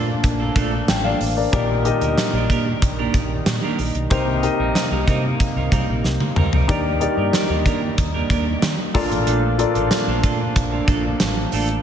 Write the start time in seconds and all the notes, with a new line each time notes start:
Already playing: A#2 F3 A3 A#3 D4 F4 A4 A#4 D5
0.08 muted clean electric guitar stroke
0.24 A#1, muted clean electric guitar stroke, kick, closed hi-hat
0.40 A3 D4 F4 A4
0.56 A#1 A3 D4 F4 A4, kick, closed hi-hat
0.72 muted clean electric guitar stroke
0.88 A1 G5, muted clean electric guitar stroke, snare, closed hi-hat
1.04 A3 D4 F4 A4 D5 F5
1.20 A1, muted clean electric guitar stroke, open hi-hat
1.37 A#4 D5, muted clean electric guitar stroke
1.52 A#1 A#2 D#3 G3 A#3 D4 D#4 G4 A#4 D5, kick, closed hi-hat
1.70 muted clean electric guitar stroke
1.85 D#4 G4 A#4 D#5, muted clean electric guitar stroke, closed hi-hat
2.01 D2 A#3 D4 G4 A#4, closed hi-hat
2.17 muted clean electric guitar stroke, snare, closed hi-hat
2.33 A#1 A#3 D4 G4 A#4
2.50 A#2 A#3 D4 G4 A#4, kick, closed hi-hat
2.66 muted clean electric guitar stroke
2.82 A#1, muted clean electric guitar stroke, kick, closed hi-hat
2.98 A#3 D4 G4 A#4
3.14 A#1, muted clean electric guitar stroke, kick, closed hi-hat
3.30 muted clean electric guitar stroke
3.46 A#2, muted clean electric guitar stroke, snare, closed hi-hat
3.63 A#3 D4 G4 A#4
3.79 A#1, muted clean electric guitar stroke, open hi-hat
3.95 B1, muted clean electric guitar stroke, closed hi-hat
4.10 C2 C3 G3 A#3 C4 D#4 G4 A#4 C5, kick, closed hi-hat
4.28 muted clean electric guitar stroke
4.42 D#4 G4 A#4 D#5, muted clean electric guitar stroke, closed hi-hat
4.59 A#1 G3 C4 D#4 A#4
4.75 muted clean electric guitar stroke, snare, closed hi-hat
4.91 C2 G3 C4 D#4 A#4
5.07 C3 G3 C4 D#4 A#4, kick, closed hi-hat
5.24 muted clean electric guitar stroke
5.40 muted clean electric guitar stroke, kick, closed hi-hat
5.56 C2 G3 C4 D#4 A#4
5.72 C2 G3 C4 D#4 A#4, kick, closed hi-hat
5.88 A#1, muted clean electric guitar stroke
6.04 C2, muted clean electric guitar stroke, snare
6.20 muted clean electric guitar stroke, high tom
6.36 D2 G3 C4 D#4 A#4, mid tom
6.53 C2 G3 C4 D#4 A#4, floor tom
6.68 D#2 D#3 G3 A#3 D4 D#4 G4 A#4 D5, kick, closed hi-hat
6.86 muted clean electric guitar stroke
7.00 D#4 G4 A#4 D5, muted clean electric guitar stroke, closed hi-hat
7.17 G2 A#3 D4 G4 A#4
7.33 muted clean electric guitar stroke, snare, closed hi-hat
7.50 D#2 A#3 D4 G4 A#4
7.66 D#3 A#3 D4 G4 A#4, kick, closed hi-hat
7.82 muted clean electric guitar stroke
7.98 D#2, muted clean electric guitar stroke, kick, closed hi-hat
8.14 A#3 D4 G4 A#4
8.30 D#2 A#3 D4 G4 A#4, kick, closed hi-hat
8.46 muted clean electric guitar stroke
8.62 D#3, muted clean electric guitar stroke, snare, closed hi-hat
8.79 muted clean electric guitar stroke
8.94 A#1 A#2 F3 A3 A#3 D4 F4 A4 A#4 D5, kick, open hi-hat
9.11 A1, muted clean electric guitar stroke, closed hi-hat
9.27 A#1 A3 D4 F4 A4, closed hi-hat
9.42 muted clean electric guitar stroke
9.58 F4 A4 A#4 D5, muted clean electric guitar stroke, closed hi-hat
9.75 A1 A3 D4 F4 A4, closed hi-hat
9.91 muted clean electric guitar stroke, snare, closed hi-hat, tambourine
10.07 A#1 A3 D4 F4 A4
10.24 A#2 A3 D4 F4 A4, kick, closed hi-hat
10.41 muted clean electric guitar stroke
10.56 A#1, muted clean electric guitar stroke, kick, closed hi-hat
10.72 A3 D4 F4 A4
10.88 A#1 A3 D4 F4 A4, kick, closed hi-hat
11.05 muted clean electric guitar stroke
11.20 A1, muted clean electric guitar stroke, snare, closed hi-hat, tambourine
11.38 muted clean electric guitar stroke
11.52 A1 A3 D4 F4 A4, open hi-hat
11.69 muted clean electric guitar stroke, closed hi-hat